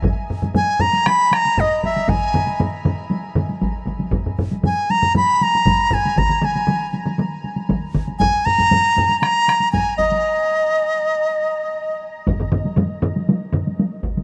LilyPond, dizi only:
\new Staff \with { instrumentName = "Dizi" } { \time 4/4 \tempo 4 = 118 r4 aes''8 bes''8 ces'''8 bes''8 ees''8 fes''8 | aes''4 r2. | r4 aes''8 bes''8 ces'''8 bes''4 aes''8 | bes''8 aes''4 r2 r8 |
aes''8 bes''4. bes''4 aes''8 ees''8~ | ees''2.~ ees''8 r8 | r1 | }